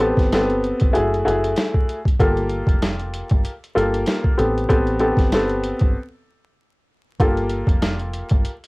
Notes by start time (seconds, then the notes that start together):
Already playing: A1
0.00 B3 C4 G4 A4, closed hi-hat
0.17 G1, kick, snare, closed hi-hat
0.32 B3 C4 G4 A4, snare, closed hi-hat
0.50 closed hi-hat
0.64 closed hi-hat
0.80 G1, kick, closed hi-hat
0.93 F#1 A3 E4 F#4 G#4, closed hi-hat
1.14 closed hi-hat
1.25 F#1 A3 E4 F#4 G#4, closed hi-hat
1.44 closed hi-hat
1.56 snare, closed hi-hat
1.74 kick
1.89 closed hi-hat
2.05 kick, closed hi-hat
2.20 G1 A#3 F4 G4 A4, kick, closed hi-hat
2.37 closed hi-hat
2.50 closed hi-hat
2.67 F1, kick, closed hi-hat
2.82 snare, closed hi-hat
3.00 closed hi-hat
3.14 closed hi-hat
3.30 G1, kick, closed hi-hat
3.45 closed hi-hat
3.64 closed hi-hat
3.75 G1 A#3 F4 G4 A4, closed hi-hat
3.94 closed hi-hat
4.06 snare, closed hi-hat
4.24 kick
4.37 A1 B3 C4 G4 A4, closed hi-hat
4.58 closed hi-hat
4.69 A1 B3 C4 G4 A4, kick, closed hi-hat
4.87 closed hi-hat
4.99 B3 C4 G4 A4, closed hi-hat
5.17 G1, kick, snare, closed hi-hat
5.32 B3 C4 G4 A4, snare, closed hi-hat
5.49 closed hi-hat
5.63 closed hi-hat
5.79 G1, kick, closed hi-hat
7.20 G1 A#3 F4 G4 A4, kick, closed hi-hat
7.37 closed hi-hat
7.49 closed hi-hat
7.67 F1, kick, closed hi-hat
7.82 snare, closed hi-hat
7.99 closed hi-hat
8.13 closed hi-hat
8.29 G1, kick, closed hi-hat
8.45 closed hi-hat
8.64 closed hi-hat